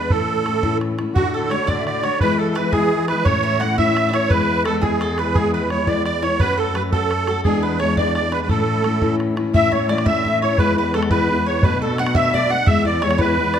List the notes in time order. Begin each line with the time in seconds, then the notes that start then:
Already playing: E2 G#3 B3 D4 B4
0.10 A2 E3 A3 C#4 E4 A4, bodhran
0.46 E3 A3 C#4 E4, bodhran
0.63 A2 E3 A3 C#4 E4, bodhran
0.81 bodhran
0.98 A3 C#4 E4, bodhran
1.15 D2 A2 D3 A3 D4 F#4, bodhran
1.33 A4
1.50 D3 A3 D4 C#5, bodhran
1.54 F#4
1.67 D2 A2 D3 A3 D4 F#4 D5, bodhran
1.79 E5
1.86 D5 E5, bodhran
1.91 D5
2.03 D3 A3 D4 F#4 C#5, bodhran
2.20 E3 G#3 B3 E4 B4, bodhran
2.38 A4
2.55 E3 G#3 B3 B4, bodhran
2.59 E4
2.72 E3 G#3 B3 E4 G#4, bodhran
3.08 G#3 B3 E4 B4, bodhran
3.19 B4
3.25 A2 E3 A3 C#4 E4 C#5, bodhran
3.43 E5
3.60 E3 A3 C#4 E4 F#5, bodhran
3.77 A2 E3 A3 C#4 E4 E5, bodhran
3.97 bodhran
4.09 E4 C#5 D5
4.13 A3 C#4 C#5, bodhran
4.28 E2 E3 G#3 B3 B4, bodhran
4.33 E4
4.64 E3 G#3 B3 A4, bodhran
4.68 E4
4.82 E3 G#3 B3 E4 G#4, bodhran
4.94 G#4
5.01 A4, bodhran
5.07 G#4
5.17 G#3 B3 E4 B4, bodhran
5.34 E3 G#3 B3 E4 G#4 B4, bodhran
5.40 G#4
5.53 B4
5.70 E3 G#3 B3 E4 C#5, bodhran
5.87 E3 G#3 B3 E4 D5, bodhran
6.05 D5, bodhran
6.22 G#3 B3 E4 C#5, bodhran
6.39 F#2 F#3 A3 C#4 F#4 B4, bodhran
6.57 A4
6.75 F#3 A3 C#4 F#4 B4, bodhran
6.92 F#3 A3 C#4 F#4 A4, bodhran
7.09 B4, bodhran
7.14 A4
7.26 C#4 F#4 G#4 A4, bodhran
7.30 A3 A4
7.44 E2 E3 G#3 B3 D4 G#4, bodhran
7.63 B4
7.79 E3 G#3 B3 D4 C#5, bodhran
7.96 E3 G#3 B3 D4 D5, bodhran
8.14 D5, bodhran
8.31 G#3 B3 D4 B4, bodhran
8.42 B4
8.48 A2 E3 A3 C#4 E4 A4 B4, bodhran
8.84 E3 A3 C#4 E4, bodhran
9.01 A2 E3 A3 C#4 E4, bodhran
9.20 bodhran
9.36 A3 C#4 E4, bodhran
9.53 A2 E3 A3 C#4 E4 E5, bodhran
9.71 A3 C#4 E4 C#5, bodhran
9.88 E3 A3 C#4 E4 D5, bodhran
9.98 bodhran
10.05 A2 E3 A3 C#4 E4 E5, bodhran
10.24 E3 A3 C#4 E4, bodhran
10.41 A3 C#4 E4 C#5
10.58 E2 E3 G#3 B3 E4 B4, bodhran
10.76 G#3 B3 E4 B4, bodhran
10.93 E3 G#3 B3 E4 A4, bodhran
11.03 bodhran
11.10 E3 G#3 B3 E4 B4, bodhran
11.29 E3 G#3 B3 E4, bodhran
11.46 G#3 B3 E4 C#5
11.62 B2 F#3 A3 B3 D4 B4, bodhran
11.81 A3 B3 D4 A4, bodhran
11.97 F#3 A3 B3 D4 F#5, bodhran
12.06 bodhran
12.14 B2 F#3 A3 B3 D4 E5, bodhran
12.33 F#3 A3 B3 D4 D5, bodhran
12.49 A3 B3 D4 F#5
12.66 E2 E3 G#3 B3 E4 E5 F#5, bodhran
12.71 E5
12.84 G#3 B3 E4 D5, bodhran
13.01 E3 G#3 B3 E4 C#5, bodhran
13.11 bodhran
13.18 E3 G#3 B3 E4 B4, bodhran
13.36 E3 G#3 B3 E4, bodhran
13.54 B3 E4 D5, bodhran